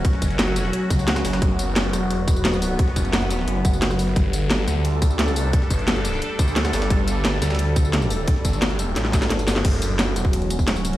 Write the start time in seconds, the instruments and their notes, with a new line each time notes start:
Already playing: analog synth pad F#3 C#4 F#4
0.05 kick, closed hi-hat
0.13 snare
0.22 detuned saw bass F#1, kick, closed hi-hat, tambourine
0.30 closed hi-hat
0.39 snare, closed hi-hat
0.48 closed hi-hat
0.56 closed hi-hat, tambourine
0.65 snare
0.73 closed hi-hat
0.90 detuned saw bass C#2, kick, closed hi-hat, tambourine
0.99 snare, tambourine
1.08 snare, closed hi-hat
1.16 cross-stick, snare, closed hi-hat, tambourine
1.25 detuned saw bass F#1, snare, closed hi-hat, open hi-hat, tambourine
1.33 snare, closed hi-hat
1.42 detuned saw bass F#1, analog synth pad B3, kick, closed hi-hat
1.59 closed hi-hat, tambourine
1.76 snare, closed hi-hat
1.93 detuned saw bass E1, cross-stick, closed hi-hat, tambourine
2.10 closed hi-hat, open hi-hat
2.28 kick, closed hi-hat, tambourine
2.36 tambourine
2.45 snare, closed hi-hat
2.53 tambourine
2.62 closed hi-hat, open hi-hat, tambourine
2.79 kick, closed hi-hat
2.88 snare
2.96 detuned saw bass F#1, kick, closed hi-hat, tambourine
3.05 closed hi-hat
3.13 snare, closed hi-hat
3.22 closed hi-hat
3.30 closed hi-hat, tambourine
3.39 snare
3.48 detuned saw bass F#1, closed hi-hat
3.65 kick, closed hi-hat, tambourine
3.73 tambourine
3.82 snare, closed hi-hat
3.90 cross-stick, tambourine
3.99 detuned saw bass F#1, closed hi-hat, open hi-hat, tambourine
4.08 snare
4.16 detuned saw bass G1, analog synth pad G3 D4 A4, kick, closed hi-hat
4.33 closed hi-hat, tambourine
4.50 snare, closed hi-hat
4.68 detuned saw bass D2, cross-stick, closed hi-hat, tambourine
4.85 closed hi-hat, open hi-hat
5.02 kick, closed hi-hat, tambourine
5.11 tambourine
5.19 snare, closed hi-hat
5.28 detuned saw bass C#2, tambourine
5.36 closed hi-hat, open hi-hat, tambourine
5.53 kick, closed hi-hat
5.62 snare
5.70 detuned saw bass G1, kick, closed hi-hat, tambourine
5.79 closed hi-hat
5.88 snare, closed hi-hat
5.96 closed hi-hat
6.05 closed hi-hat, tambourine
6.13 snare
6.22 closed hi-hat
6.39 detuned saw bass D2, kick, closed hi-hat, tambourine
6.48 snare, tambourine
6.56 snare, closed hi-hat
6.65 cross-stick, snare, closed hi-hat, tambourine
6.73 detuned saw bass G1, snare, closed hi-hat, open hi-hat, tambourine
6.82 snare, closed hi-hat
6.90 detuned saw bass G1, kick, closed hi-hat
7.08 closed hi-hat, tambourine
7.25 snare, closed hi-hat
7.42 detuned saw bass D2, cross-stick, snare, closed hi-hat, tambourine
7.50 snare, closed hi-hat
7.55 snare, closed hi-hat
7.59 closed hi-hat, open hi-hat
7.76 kick, closed hi-hat, tambourine
7.85 tambourine
7.93 snare, closed hi-hat
8.02 tambourine
8.10 closed hi-hat, open hi-hat, tambourine
8.28 kick, closed hi-hat
8.36 snare
8.45 detuned saw bass G1, kick, closed hi-hat, tambourine
8.53 closed hi-hat, tambourine
8.62 snare, closed hi-hat
8.70 closed hi-hat
8.79 closed hi-hat, tambourine
8.96 detuned saw bass A1, snare, closed hi-hat
9.05 snare
9.13 kick, snare, closed hi-hat, tambourine
9.22 snare, closed hi-hat, tambourine
9.30 snare, closed hi-hat
9.39 closed hi-hat, tambourine
9.48 detuned saw bass G1, snare, closed hi-hat, open hi-hat, tambourine
9.56 snare
9.65 detuned saw bass F#1, analog synth pad F#3 C#4 F#4, kick, closed hi-hat, crash, ride
9.82 closed hi-hat, ride, tambourine
9.99 snare, closed hi-hat, ride
10.16 detuned saw bass E1, cross-stick, closed hi-hat, ride, tambourine
10.25 kick
10.33 closed hi-hat, open hi-hat, ride
10.42 closed hi-hat
10.50 closed hi-hat, ride, tambourine
10.59 kick, tambourine
10.68 snare, closed hi-hat, ride
10.76 tambourine
10.85 closed hi-hat, ride, tambourine
10.93 closed hi-hat